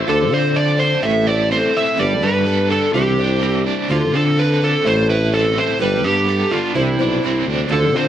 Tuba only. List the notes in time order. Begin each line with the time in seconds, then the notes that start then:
0.07 D2
0.31 D3
1.02 A1
1.98 G1
2.22 G2
2.93 C2
3.89 D2
4.14 D3
4.84 A1
5.80 G1
6.04 G2
6.75 C2
6.99 B1
7.23 C2
7.45 D2
7.69 D2
7.94 D3